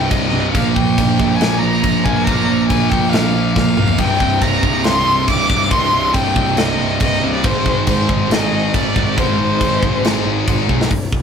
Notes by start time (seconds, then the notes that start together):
Already playing: C2 G2 C3 G5
0.10 C1 C2 G2 C3 D#5, kick, crash
0.29 C1 C2 G2 D#5
0.34 C3
0.52 A#1 A#2 F3 A#3 F5, kick, crash
0.74 A#1 A#2 F3 G5, kick
0.78 A#3
0.98 A#1 A#2 F3 A#3, kick, crash
1.20 A#1 A#2 F3 A#3, kick
1.36 G#5
1.41 A#1 A#2 F3 A#3, snare, crash
1.59 A#1 A#2 F3 A#3 A#5
1.83 A#1 A#2 F3 A#3, kick, crash
2.04 A#1 A#2 F3 A#3 G#5, kick
2.24 A#1 A#2 F3 A#3 A#5, kick, crash
2.48 A#1 A#2 F3 A#3
2.68 A#1 A#2 F3 A#3 G#5, kick, crash
2.90 A#1 A#2 F3 A#3 G5, kick
3.09 A#1 A#2 F3 A#3 F5, crash
3.14 snare
3.33 A#1 A#2 F3 A#3
3.55 A#1 A#2 F3 A#3 F5, kick, snare
3.76 B1 A#2 F3 A#3, mid tom
3.81 A#2
3.88 floor tom
3.98 C1 C2 G2 C3 G5, kick, crash
4.19 C1 C2 G2 C3, kick
4.41 C1 C2 G2 C3 A#5, kick, crash
4.63 C1 C2 G2 C3, kick
4.84 C1 C2 G2 C3 C6, snare, crash
5.06 C1 C2 G2 C3
5.28 C1 C2 G2 C3 D6, kick, crash
5.49 C1 C2 G2 C3, kick
5.71 C1 C2 G2 C3 C6, kick, crash
5.92 C1 C2 G2 C3
6.13 C1 C2 G2 C3 G5, kick, crash
6.36 C1 C2 G2 C3, kick
6.57 C1 C2 G2 C3 D#5, snare, crash
6.79 C1 C2 G2 C3
7.00 C1 C2 G2 C3 D#5, kick, crash
7.22 C1 C2 G2 C3
7.27 C2
7.33 D5
7.44 G#1 G#2 D#3 G#3 C5, kick, crash
7.65 G#1 G#2 D#3 G#3, kick
7.87 G#1 G#2 D#3 G#3 C5, kick, crash
8.09 G#1 G#2 D#3 G#3, kick
8.30 G#1 G#2 D#3 G#3 D#5, snare, crash
8.51 G#1 G#2 D#3 G#3
8.74 G#1 G#2 D#3 G#3 D5, kick, crash
8.96 G#1 G#2 D#3 G#3, kick
9.17 G#1 G#2 D#3 G#3 C5, kick, crash
9.39 G#1 G#2 D#3 G#3
9.60 G#1 G#2 D#3 G#3, kick, crash
9.82 G#1 G#2 D#3 G#3, kick
10.03 G#1 G#2 D#3 G#3, snare, crash
10.25 G#1 G#2 D#3 G#3
10.47 G#1 G#2 D#3 G#3, kick, crash
10.69 B1 G#2 D#3 G#3, kick
10.73 G#2
10.81 snare
10.91 C1, kick, open hi-hat
11.12 C1, kick